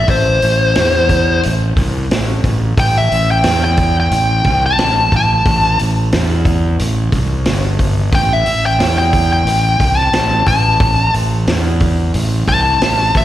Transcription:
0.08 A1 C5, kick, open hi-hat
0.42 A1, open hi-hat
0.75 E2, snare, open hi-hat
1.09 kick, open hi-hat
1.43 A1, open hi-hat
1.76 C2, kick, open hi-hat
2.11 A1, snare, open hi-hat
2.44 A1, kick, open hi-hat
2.77 A1 G5, kick, open hi-hat
2.98 E5
3.12 A1, open hi-hat
3.31 G5
3.44 E2, snare, open hi-hat
3.64 G5
3.77 kick, open hi-hat
4.00 G5
4.11 A1, open hi-hat
4.44 C2, kick, open hi-hat
4.66 A5
4.78 A1, snare, open hi-hat
5.12 A1, kick, open hi-hat
5.17 A5
5.46 A1, kick, open hi-hat
5.79 A1, open hi-hat
6.12 E2, snare, open hi-hat
6.45 kick, open hi-hat
6.79 A1, open hi-hat
7.12 C2, kick, open hi-hat
7.45 G1, snare, open hi-hat
7.79 kick, open hi-hat
8.13 A1 G5, kick, open hi-hat
8.33 E5
8.46 A1, open hi-hat
8.66 G5
8.79 E2, snare, open hi-hat
8.98 G5
9.13 kick, open hi-hat
9.33 G5
9.45 A1, open hi-hat
9.80 C2, kick, open hi-hat
9.98 A5
10.13 A1, snare, open hi-hat
10.46 A1 A5, kick, open hi-hat
10.80 A1, kick, open hi-hat
11.14 A1, open hi-hat
11.47 E2, snare, open hi-hat
11.80 kick, open hi-hat
12.14 A1, open hi-hat
12.47 C2 A5, kick, open hi-hat
12.82 A1, snare, open hi-hat
13.15 A1 E5, kick, open hi-hat

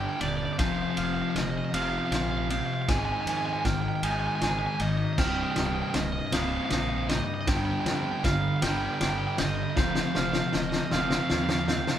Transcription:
Already playing: G2 D3 G3 D4 G4 G6
0.08 G5
0.17 G2 G5, ride
0.21 D#1 D3 D4 D5 G6
0.29 D5
0.37 D5
0.45 D5
0.53 D5
0.58 F1 F2 C3 F3 F5 G6, kick, snare, ride
0.67 F5
0.75 F5
0.82 F5
0.91 F5
0.97 F1 C3 F5 F6, ride
1.06 F5
1.14 F5
1.22 F5
1.30 F5
1.35 F1 F2 C3 F3 D#5, snare, ride
1.43 D#5
1.51 D#5
1.58 D#5
1.65 D#5
1.73 F1 F2 C3 F3 C4 F5 F6, ride
1.82 F5
1.90 F5
1.98 F5
2.06 F5
2.11 A#1 F4, snare, ride
2.16 F5
2.23 F5
2.31 F5
2.38 F5
2.50 F2 C3 C4 F5 G6, ride
2.60 F5
2.66 F5
2.74 F5
2.82 F5
2.88 G#1 G#2 D#3 G#3 G#5, kick, snare, ride
2.98 G#5
3.05 G#5
3.12 G#5
3.21 G#5
3.26 F2 D#3 G#5, ride
3.37 G#5
3.46 G#5
3.53 G#5
3.61 G#2 G#3 G#5, snare, ride
3.65 G#1 D#3 G5 F6, kick
3.73 G5
3.82 G5
3.88 G5
3.96 G5
4.03 G#1 G#2 D#3 G#3 D#4 G#5 G6, ride
4.12 G#5
4.20 G#5
4.27 G#5
4.35 G#5
4.41 G#1 G#4 G#5, snare, ride
4.50 G#5
4.59 G#5
4.66 G#5
4.75 G#5
4.79 G#1 G#2 D#3 D#4 D#5 G6, ride
4.89 D#5
4.98 D#5
5.05 D#5
5.13 D#5
5.17 C1 C2 G2 C3 G5 F6, kick, snare, crash
5.28 G5
5.35 G5
5.44 G5
5.51 G5
5.56 C1 G2 G5 D#6, snare, ride
5.66 G5
5.75 G5
5.82 G5
5.90 G5, snare, ride
5.95 C1 C2 G2 D#5
6.04 D#5
6.12 D#5
6.19 D#5
6.27 D#5
6.32 C1 C2 G2 C3 G3 F5 D#6, snare, ride
6.42 F5
6.49 F5
6.58 F5
6.65 F5
6.70 A#1 D#4 F5, snare, ride
6.82 F5
6.89 F5
6.98 F5
7.09 C2 G2 G3 D#5 G6, snare, ride
7.18 D#5
7.24 D#5
7.34 D#5
7.41 D#5
7.47 G1 G2 D3 G3 G5, kick, snare, ride
7.57 G5
7.65 G5
7.71 G5
7.80 G5
7.85 F2 D3 G5, snare, ride
7.95 G5
8.04 G5
8.11 G5
8.20 G5
8.24 G1 G2 D3 G3 F5 F6, kick, snare, ride
8.32 F5
8.41 F5
8.48 F5
8.56 F5
8.62 G1 G2 D3 G3 G5, snare, ride
8.70 G5
8.78 G5
8.86 G5
8.94 G5
9.01 G1 G4 G5, snare, ride
9.10 G5
9.18 G5
9.27 G5
9.38 G1 G2 D3 D#5 G6, snare, ride
9.46 D#5
9.55 D#5
9.63 D#5
9.70 D#5
9.76 F1 F2 C3 F3 F5 G6, kick, snare
9.85 F5
9.91 F5
9.95 snare
10.00 F5
10.08 F5
10.15 F1 C3 F5 F6, snare
10.24 F5
10.32 F5, snare
10.40 F5
10.48 F5
10.53 F1 F2 C3 F3 D#5, snare
10.62 D#5
10.70 D#5, snare
10.78 D#5
10.85 D#5
10.91 F1 F2 C3 F3 C4 F5 F6, snare
11.01 F5
11.08 F5, snare
11.15 F5
11.23 F5
11.30 D#2 F4 F5, snare
11.38 F5
11.44 F5
11.49 snare
11.53 F5
11.60 F5
11.68 F2 C3 C4 F5 G6, snare
11.78 F5
11.85 F5, snare
11.92 F5

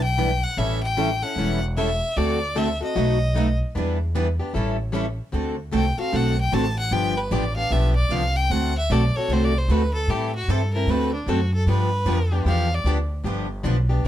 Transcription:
Already playing: B1
0.03 G5
0.18 E3 G3 B3 D4 E4 G4 B4
0.43 F#5
0.57 A1 E3 G3 C#4 E4 A4 E5
0.83 G5
0.97 E3 G3 C#4 E4 A4
1.22 C#4 E4 A4 F#5
1.36 E1 E3 G3 C#4 E4 A4
1.77 E3 G3 C#4 E4 A4 E5
2.16 D2 D3 A3 C4 F#4 A4 D5
2.55 D3 A3 C4 F#4 A4 E5
2.81 C4 F#4 A4 D#5
2.95 B1 B2 F#3 A3 D#4 F#4 B4
3.35 B2 F#3 A3 D#4 F#4 B4
3.75 E2 E3 G3 B3 D4 E4 G4 B4
4.15 E3 G3 B3 D4 E4 G4 B4
4.39 B3 D4 G4
4.53 A1 E3 G3 C#4 E4 A4
4.92 E3 G3 C#4 E4 A4
5.32 D2 D3 A3 C4 F#4 A4
5.72 C2 D3 A3 C4 F#4 A4
5.76 G5
5.98 C4 F#4 A4 F5, muted upright bass stroke
6.12 B1 D3 A3 C4 F#4 A4 F#5
6.40 G5
6.52 A1 D3 A3 C4 F#4 A4 A5
6.79 F#5
6.91 G1 D3 F3 B3 D4 G4 G5
7.17 B4
7.31 A1 D3 F3 B3 D4 G4 D5
7.56 B3 D4 G4 F5
7.71 B1 D3 F3 B3 D4 G4 E5
7.95 D5
8.09 C2 D3 F3 B3 D4 G4 F5
8.36 G5
8.50 D2 D3 A3 C4 F#4 A4 F#5
8.78 E5
8.90 B1 D3 A3 C4 F#4 A4 D5
9.16 C4 F#4 A4 C#5
9.28 C2 D3 A3
9.32 C4 F#4 A4 C5
9.44 D5
9.58 C5
9.68 D2 D3 A3 C4 F#4 A4 B4
9.94 A4
10.08 A2 E3 G3 C4 E4 G4 A4
10.35 F#4
10.48 G2 E3 G3 C4 E4 A4
10.73 C4 E4 A4 A#4
10.86 D2 B4
10.91 D3 A3 C4 F#4 A4
11.14 D4
11.26 F#2 D3 A3 C4 F#4 A4
11.54 A4
11.66 G2 D3 F3 B3 D4 G4 B4
12.05 F2 D3 F3 B3 D4 G4
12.32 B3 D4 G4
12.45 E2 D3 F3 B3 D4 G4 F5
12.74 D5
12.84 D2 D3 F3 B3 D4 G4
13.24 G1 D3 F3 B3 D4 G4
13.63 B1 D3 F3 B3 D4 G4
13.89 B3 D4 G4
14.04 A1 D3

